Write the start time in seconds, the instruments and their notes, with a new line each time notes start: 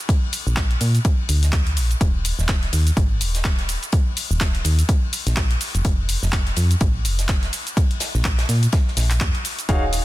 0.09 kick, closed hi-hat, ride, shaker
0.33 open hi-hat, ride, shaker
0.47 fm bass A#1, shaker
0.56 kick, snare, clap, closed hi-hat, ride, shaker
0.71 closed hi-hat
0.81 fm bass A#2, open hi-hat, ride, shaker
0.95 closed hi-hat, shaker
1.05 kick, closed hi-hat, ride, shaker
1.29 fm bass D2, open hi-hat, ride, shaker
1.43 snare, closed hi-hat, shaker
1.52 kick, snare, clap, closed hi-hat, ride, shaker
1.66 closed hi-hat, ride
1.77 fm bass A#1, open hi-hat, ride, shaker
1.91 closed hi-hat, shaker
2.01 fm bass D#1, kick, closed hi-hat, ride, shaker
2.25 open hi-hat, ride, shaker
2.39 fm bass D#1, snare, shaker
2.48 kick, snare, clap, closed hi-hat, ride, shaker
2.63 snare, closed hi-hat
2.73 fm bass D#2, open hi-hat, ride, shaker
2.87 closed hi-hat, shaker
2.97 fm bass G#1, kick, closed hi-hat, ride, shaker
3.21 fm bass D#1, open hi-hat, ride, shaker
3.35 snare, closed hi-hat, shaker
3.44 kick, snare, clap, closed hi-hat, ride, shaker
3.59 snare, closed hi-hat
3.69 open hi-hat, ride, shaker
3.83 closed hi-hat, shaker
3.92 kick, closed hi-hat, ride, shaker
4.17 open hi-hat, ride, shaker
4.31 fm bass D#1, shaker
4.40 kick, snare, clap, closed hi-hat, ride, shaker
4.55 closed hi-hat
4.65 fm bass D#2, open hi-hat, ride, shaker
4.79 closed hi-hat, shaker
4.89 kick, closed hi-hat, ride, shaker
5.13 open hi-hat, ride, shaker
5.27 fm bass A#1, snare, closed hi-hat, shaker
5.36 kick, snare, clap, closed hi-hat, ride, shaker
5.51 closed hi-hat, ride
5.61 open hi-hat, ride, shaker
5.75 fm bass F1, closed hi-hat, shaker
5.85 kick, closed hi-hat, ride, shaker
6.09 open hi-hat, ride, shaker
6.22 fm bass F1, snare, shaker
6.32 kick, snare, clap, closed hi-hat, ride, shaker
6.47 snare, closed hi-hat
6.56 fm bass F2, open hi-hat, ride, shaker
6.71 closed hi-hat, shaker
6.81 fm bass A1, kick, closed hi-hat, ride, shaker
7.05 fm bass F1, open hi-hat, ride, shaker
7.19 snare, closed hi-hat, shaker
7.28 kick, snare, clap, closed hi-hat, ride, shaker
7.43 snare, closed hi-hat
7.53 open hi-hat, ride, shaker
7.67 closed hi-hat, shaker
7.77 kick, closed hi-hat, ride, shaker
7.91 closed hi-hat
8.00 snare, open hi-hat, ride, shaker
8.15 fm bass A#1, snare, shaker
8.25 kick, clap, closed hi-hat, ride, shaker
8.38 snare, closed hi-hat, ride
8.49 fm bass A#2, snare, open hi-hat, shaker
8.63 closed hi-hat, ride, shaker
8.72 kick, snare, closed hi-hat, ride, shaker
8.88 snare
8.97 fm bass A#1, snare, open hi-hat, ride, shaker
9.10 snare, clap, closed hi-hat, shaker
9.20 fm bass F2, kick, clap, closed hi-hat, ride, shaker
9.35 closed hi-hat
9.45 open hi-hat, ride, shaker
9.59 closed hi-hat, shaker
9.69 fm bass D#1, grand piano D#4 F#4 G#4 C#5 F5, kick, closed hi-hat, ride, shaker
9.93 open hi-hat, ride, shaker